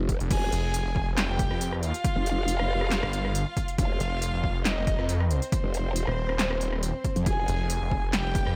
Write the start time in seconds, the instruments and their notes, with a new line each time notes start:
0.00 wobble bass F1
0.09 kick, closed hi-hat
0.20 detuned saw bass F1, closed hi-hat
0.31 wobble bass F1, violin section G#4 G#5, kick, closed hi-hat, crash
0.52 detuned saw bass F1, closed hi-hat
0.74 closed hi-hat
0.86 detuned saw bass F1
0.96 kick
1.18 violin section G4 G5, snare, clap, closed hi-hat
1.29 detuned saw bass F1
1.39 kick, closed hi-hat
1.51 detuned saw bass F2, cross-stick
1.61 closed hi-hat
1.73 cross-stick
1.83 violin section F4 F5, closed hi-hat
1.94 closed hi-hat
2.04 kick, closed hi-hat
2.16 wobble bass F1
2.26 closed hi-hat
2.48 closed hi-hat
2.59 cross-stick
2.81 cross-stick
2.91 snare, clap, closed hi-hat
3.03 detuned saw bass G1, cross-stick
3.13 closed hi-hat
3.25 cross-stick
3.35 closed hi-hat
3.57 kick, closed hi-hat
3.68 closed hi-hat
3.78 wobble bass F1, violin section F4 F5, kick, closed hi-hat
4.00 detuned saw bass F1, closed hi-hat
4.22 closed hi-hat
4.33 detuned saw bass F1
4.44 kick
4.65 violin section D#4 D#5, snare, clap, closed hi-hat
4.77 detuned saw bass F1
4.87 kick, closed hi-hat
4.99 detuned saw bass F2, cross-stick
5.09 closed hi-hat
5.20 cross-stick
5.31 violin section C4 C5, closed hi-hat
5.42 closed hi-hat
5.52 kick, closed hi-hat
5.64 wobble bass F1
5.74 closed hi-hat
5.96 closed hi-hat
6.07 detuned saw bass D#1, cross-stick
6.29 cross-stick
6.39 snare, clap, closed hi-hat
6.51 cross-stick
6.61 closed hi-hat
6.73 cross-stick
6.83 closed hi-hat
7.04 kick, closed hi-hat
7.16 wobble bass F2, closed hi-hat
7.26 wobble bass F1, violin section G#4 G#5, kick, closed hi-hat
7.48 detuned saw bass F1, closed hi-hat
7.70 closed hi-hat
7.81 detuned saw bass F1
7.91 kick
8.13 violin section G4 G5, snare, clap, closed hi-hat
8.25 detuned saw bass F1
8.35 kick, closed hi-hat
8.46 detuned saw bass F2, cross-stick